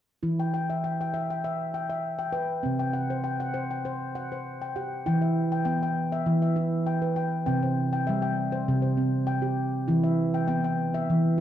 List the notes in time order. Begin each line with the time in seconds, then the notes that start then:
0.23 E3 E4
0.40 G5
0.54 G5
0.70 E5
0.84 G5
1.01 G5
1.14 E5
1.30 G5
1.44 E5
1.74 G5
1.90 E5
2.19 G5
2.32 B4 G5
2.63 C3 C4
2.79 G5
2.93 F#5
3.10 C5
3.24 G5
3.40 F#5
3.54 C5
3.71 G5
3.85 C5
4.15 F#5
4.32 C5
4.62 G5
4.76 G4 F#5
5.06 E3 E4 G5
5.22 E5
5.52 G5
5.65 B3 G5
5.83 G5
6.12 E5
6.26 E3
6.42 E5
6.56 E4
6.86 G5
7.02 B4
7.16 G5
7.46 C3 C4 G5
7.63 C5
7.93 G5
8.07 G3 E5
8.22 G5
8.52 C5
8.68 C3
8.82 C5
8.97 C4
9.27 G5
9.42 G4
9.88 E3 E4
10.04 E5
10.34 G5
10.48 B3 G5
10.64 G5
10.94 E5
11.10 E3